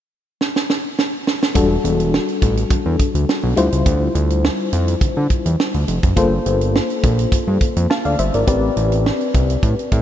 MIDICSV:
0, 0, Header, 1, 4, 480
1, 0, Start_track
1, 0, Tempo, 576923
1, 1292, Time_signature, 4, 2, 24, 8
1, 8336, End_track
2, 0, Start_track
2, 0, Title_t, "FM electric piano"
2, 0, Program_c, 0, 5
2, 1286, Note_on_c, 0, 55, 67
2, 1290, Note_on_c, 0, 62, 69
2, 1294, Note_on_c, 0, 66, 64
2, 1298, Note_on_c, 0, 69, 75
2, 2936, Note_off_c, 0, 55, 0
2, 2938, Note_off_c, 0, 62, 0
2, 2940, Note_off_c, 0, 66, 0
2, 2942, Note_off_c, 0, 69, 0
2, 2966, Note_on_c, 0, 55, 74
2, 2969, Note_on_c, 0, 64, 69
2, 2973, Note_on_c, 0, 65, 68
2, 2978, Note_on_c, 0, 72, 77
2, 4856, Note_off_c, 0, 55, 0
2, 4857, Note_off_c, 0, 64, 0
2, 4859, Note_off_c, 0, 65, 0
2, 4862, Note_off_c, 0, 72, 0
2, 5127, Note_on_c, 0, 58, 79
2, 5131, Note_on_c, 0, 65, 70
2, 5136, Note_on_c, 0, 69, 67
2, 5141, Note_on_c, 0, 72, 84
2, 6545, Note_off_c, 0, 69, 0
2, 6548, Note_off_c, 0, 72, 0
2, 6573, Note_on_c, 0, 81, 58
2, 6578, Note_on_c, 0, 77, 55
2, 6688, Note_off_c, 0, 77, 0
2, 6694, Note_off_c, 0, 81, 0
2, 6698, Note_on_c, 0, 77, 69
2, 6705, Note_on_c, 0, 74, 56
2, 6806, Note_off_c, 0, 77, 0
2, 6809, Note_off_c, 0, 74, 0
2, 6813, Note_on_c, 0, 76, 69
2, 6818, Note_on_c, 0, 72, 58
2, 6933, Note_off_c, 0, 76, 0
2, 6936, Note_off_c, 0, 72, 0
2, 6941, Note_on_c, 0, 74, 58
2, 6946, Note_on_c, 0, 70, 51
2, 7016, Note_off_c, 0, 58, 0
2, 7018, Note_off_c, 0, 65, 0
2, 7047, Note_on_c, 0, 60, 75
2, 7049, Note_off_c, 0, 74, 0
2, 7051, Note_on_c, 0, 67, 68
2, 7055, Note_on_c, 0, 71, 65
2, 7059, Note_on_c, 0, 74, 74
2, 7171, Note_off_c, 0, 70, 0
2, 8336, Note_off_c, 0, 60, 0
2, 8336, Note_off_c, 0, 67, 0
2, 8336, Note_off_c, 0, 71, 0
2, 8336, Note_off_c, 0, 74, 0
2, 8336, End_track
3, 0, Start_track
3, 0, Title_t, "Analog synth bass"
3, 0, Program_c, 1, 38
3, 1293, Note_on_c, 1, 28, 112
3, 1481, Note_off_c, 1, 28, 0
3, 1531, Note_on_c, 1, 28, 97
3, 1819, Note_off_c, 1, 28, 0
3, 2015, Note_on_c, 1, 33, 102
3, 2202, Note_off_c, 1, 33, 0
3, 2251, Note_on_c, 1, 40, 47
3, 2302, Note_off_c, 1, 40, 0
3, 2378, Note_on_c, 1, 40, 92
3, 2467, Note_off_c, 1, 40, 0
3, 2617, Note_on_c, 1, 38, 76
3, 2706, Note_off_c, 1, 38, 0
3, 2858, Note_on_c, 1, 35, 92
3, 2947, Note_off_c, 1, 35, 0
3, 2973, Note_on_c, 1, 38, 99
3, 3072, Note_off_c, 1, 38, 0
3, 3100, Note_on_c, 1, 37, 77
3, 3188, Note_off_c, 1, 37, 0
3, 3212, Note_on_c, 1, 38, 101
3, 3400, Note_off_c, 1, 38, 0
3, 3452, Note_on_c, 1, 38, 101
3, 3740, Note_off_c, 1, 38, 0
3, 3933, Note_on_c, 1, 41, 104
3, 4121, Note_off_c, 1, 41, 0
3, 4171, Note_on_c, 1, 50, 46
3, 4222, Note_off_c, 1, 50, 0
3, 4300, Note_on_c, 1, 50, 85
3, 4388, Note_off_c, 1, 50, 0
3, 4539, Note_on_c, 1, 40, 74
3, 4628, Note_off_c, 1, 40, 0
3, 4779, Note_on_c, 1, 38, 83
3, 4867, Note_off_c, 1, 38, 0
3, 4891, Note_on_c, 1, 29, 83
3, 4991, Note_off_c, 1, 29, 0
3, 5019, Note_on_c, 1, 30, 91
3, 5107, Note_off_c, 1, 30, 0
3, 5131, Note_on_c, 1, 31, 107
3, 5320, Note_off_c, 1, 31, 0
3, 5372, Note_on_c, 1, 31, 94
3, 5660, Note_off_c, 1, 31, 0
3, 5855, Note_on_c, 1, 34, 97
3, 6042, Note_off_c, 1, 34, 0
3, 6090, Note_on_c, 1, 43, 50
3, 6141, Note_off_c, 1, 43, 0
3, 6218, Note_on_c, 1, 43, 97
3, 6307, Note_off_c, 1, 43, 0
3, 6460, Note_on_c, 1, 41, 90
3, 6548, Note_off_c, 1, 41, 0
3, 6699, Note_on_c, 1, 38, 89
3, 6788, Note_off_c, 1, 38, 0
3, 6813, Note_on_c, 1, 31, 88
3, 6913, Note_off_c, 1, 31, 0
3, 6940, Note_on_c, 1, 32, 85
3, 7028, Note_off_c, 1, 32, 0
3, 7052, Note_on_c, 1, 33, 86
3, 7240, Note_off_c, 1, 33, 0
3, 7293, Note_on_c, 1, 33, 97
3, 7580, Note_off_c, 1, 33, 0
3, 7776, Note_on_c, 1, 36, 90
3, 7962, Note_off_c, 1, 36, 0
3, 8011, Note_on_c, 1, 45, 94
3, 8111, Note_off_c, 1, 45, 0
3, 8253, Note_on_c, 1, 45, 105
3, 8336, Note_off_c, 1, 45, 0
3, 8336, End_track
4, 0, Start_track
4, 0, Title_t, "Drums"
4, 341, Note_on_c, 9, 38, 68
4, 424, Note_off_c, 9, 38, 0
4, 467, Note_on_c, 9, 38, 77
4, 551, Note_off_c, 9, 38, 0
4, 581, Note_on_c, 9, 38, 80
4, 664, Note_off_c, 9, 38, 0
4, 821, Note_on_c, 9, 38, 83
4, 904, Note_off_c, 9, 38, 0
4, 1060, Note_on_c, 9, 38, 84
4, 1143, Note_off_c, 9, 38, 0
4, 1187, Note_on_c, 9, 38, 93
4, 1270, Note_off_c, 9, 38, 0
4, 1293, Note_on_c, 9, 36, 98
4, 1293, Note_on_c, 9, 42, 97
4, 1376, Note_off_c, 9, 36, 0
4, 1376, Note_off_c, 9, 42, 0
4, 1537, Note_on_c, 9, 42, 64
4, 1620, Note_off_c, 9, 42, 0
4, 1662, Note_on_c, 9, 42, 51
4, 1745, Note_off_c, 9, 42, 0
4, 1782, Note_on_c, 9, 38, 104
4, 1865, Note_off_c, 9, 38, 0
4, 1901, Note_on_c, 9, 42, 36
4, 1985, Note_off_c, 9, 42, 0
4, 2013, Note_on_c, 9, 42, 80
4, 2015, Note_on_c, 9, 36, 92
4, 2096, Note_off_c, 9, 42, 0
4, 2098, Note_off_c, 9, 36, 0
4, 2141, Note_on_c, 9, 42, 53
4, 2224, Note_off_c, 9, 42, 0
4, 2251, Note_on_c, 9, 36, 104
4, 2251, Note_on_c, 9, 42, 86
4, 2334, Note_off_c, 9, 36, 0
4, 2335, Note_off_c, 9, 42, 0
4, 2492, Note_on_c, 9, 36, 88
4, 2492, Note_on_c, 9, 42, 78
4, 2575, Note_off_c, 9, 36, 0
4, 2575, Note_off_c, 9, 42, 0
4, 2621, Note_on_c, 9, 42, 55
4, 2704, Note_off_c, 9, 42, 0
4, 2739, Note_on_c, 9, 38, 105
4, 2822, Note_off_c, 9, 38, 0
4, 2971, Note_on_c, 9, 42, 72
4, 3054, Note_off_c, 9, 42, 0
4, 3099, Note_on_c, 9, 42, 56
4, 3182, Note_off_c, 9, 42, 0
4, 3212, Note_on_c, 9, 36, 104
4, 3212, Note_on_c, 9, 42, 101
4, 3295, Note_off_c, 9, 36, 0
4, 3295, Note_off_c, 9, 42, 0
4, 3454, Note_on_c, 9, 42, 62
4, 3537, Note_off_c, 9, 42, 0
4, 3581, Note_on_c, 9, 42, 56
4, 3664, Note_off_c, 9, 42, 0
4, 3700, Note_on_c, 9, 38, 114
4, 3783, Note_off_c, 9, 38, 0
4, 3932, Note_on_c, 9, 42, 79
4, 4016, Note_off_c, 9, 42, 0
4, 4059, Note_on_c, 9, 42, 54
4, 4142, Note_off_c, 9, 42, 0
4, 4170, Note_on_c, 9, 36, 108
4, 4171, Note_on_c, 9, 42, 84
4, 4254, Note_off_c, 9, 36, 0
4, 4254, Note_off_c, 9, 42, 0
4, 4409, Note_on_c, 9, 42, 71
4, 4411, Note_on_c, 9, 36, 87
4, 4492, Note_off_c, 9, 42, 0
4, 4495, Note_off_c, 9, 36, 0
4, 4540, Note_on_c, 9, 42, 53
4, 4623, Note_off_c, 9, 42, 0
4, 4659, Note_on_c, 9, 38, 113
4, 4742, Note_off_c, 9, 38, 0
4, 4778, Note_on_c, 9, 42, 35
4, 4861, Note_off_c, 9, 42, 0
4, 4892, Note_on_c, 9, 42, 72
4, 4975, Note_off_c, 9, 42, 0
4, 5018, Note_on_c, 9, 42, 53
4, 5020, Note_on_c, 9, 36, 93
4, 5101, Note_off_c, 9, 42, 0
4, 5103, Note_off_c, 9, 36, 0
4, 5131, Note_on_c, 9, 36, 97
4, 5131, Note_on_c, 9, 42, 98
4, 5214, Note_off_c, 9, 42, 0
4, 5215, Note_off_c, 9, 36, 0
4, 5374, Note_on_c, 9, 42, 66
4, 5458, Note_off_c, 9, 42, 0
4, 5501, Note_on_c, 9, 42, 52
4, 5584, Note_off_c, 9, 42, 0
4, 5622, Note_on_c, 9, 38, 109
4, 5705, Note_off_c, 9, 38, 0
4, 5741, Note_on_c, 9, 42, 34
4, 5824, Note_off_c, 9, 42, 0
4, 5853, Note_on_c, 9, 42, 73
4, 5854, Note_on_c, 9, 36, 101
4, 5936, Note_off_c, 9, 42, 0
4, 5937, Note_off_c, 9, 36, 0
4, 5980, Note_on_c, 9, 42, 50
4, 6063, Note_off_c, 9, 42, 0
4, 6090, Note_on_c, 9, 36, 100
4, 6092, Note_on_c, 9, 42, 90
4, 6174, Note_off_c, 9, 36, 0
4, 6175, Note_off_c, 9, 42, 0
4, 6330, Note_on_c, 9, 42, 72
4, 6331, Note_on_c, 9, 36, 92
4, 6414, Note_off_c, 9, 42, 0
4, 6415, Note_off_c, 9, 36, 0
4, 6460, Note_on_c, 9, 42, 54
4, 6543, Note_off_c, 9, 42, 0
4, 6578, Note_on_c, 9, 38, 115
4, 6662, Note_off_c, 9, 38, 0
4, 6697, Note_on_c, 9, 42, 30
4, 6780, Note_off_c, 9, 42, 0
4, 6812, Note_on_c, 9, 42, 68
4, 6895, Note_off_c, 9, 42, 0
4, 6938, Note_on_c, 9, 42, 52
4, 7021, Note_off_c, 9, 42, 0
4, 7051, Note_on_c, 9, 42, 96
4, 7052, Note_on_c, 9, 36, 104
4, 7134, Note_off_c, 9, 42, 0
4, 7135, Note_off_c, 9, 36, 0
4, 7294, Note_on_c, 9, 42, 62
4, 7377, Note_off_c, 9, 42, 0
4, 7420, Note_on_c, 9, 42, 52
4, 7504, Note_off_c, 9, 42, 0
4, 7541, Note_on_c, 9, 38, 116
4, 7624, Note_off_c, 9, 38, 0
4, 7661, Note_on_c, 9, 42, 35
4, 7744, Note_off_c, 9, 42, 0
4, 7774, Note_on_c, 9, 42, 73
4, 7775, Note_on_c, 9, 36, 98
4, 7857, Note_off_c, 9, 42, 0
4, 7858, Note_off_c, 9, 36, 0
4, 7902, Note_on_c, 9, 42, 46
4, 7985, Note_off_c, 9, 42, 0
4, 8011, Note_on_c, 9, 36, 107
4, 8013, Note_on_c, 9, 42, 81
4, 8095, Note_off_c, 9, 36, 0
4, 8096, Note_off_c, 9, 42, 0
4, 8146, Note_on_c, 9, 42, 38
4, 8229, Note_off_c, 9, 42, 0
4, 8251, Note_on_c, 9, 42, 72
4, 8253, Note_on_c, 9, 36, 95
4, 8335, Note_off_c, 9, 42, 0
4, 8336, Note_off_c, 9, 36, 0
4, 8336, End_track
0, 0, End_of_file